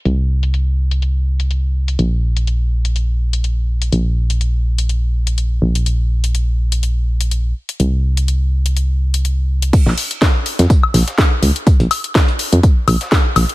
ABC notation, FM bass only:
X:1
M:4/4
L:1/16
Q:"Swing 16ths" 1/4=124
K:Cphr
V:1 name="FM bass" clef=bass
C,,16 | B,,,16 | B,,,12- B,,,2 B,,,2- | B,,,12- B,,,2 z2 |
C,,16 | z B,,, z4 z F,, z2 B,,, z3 D,, z | z B,,, z4 z F,, z2 B,,, z3 B,,, z |]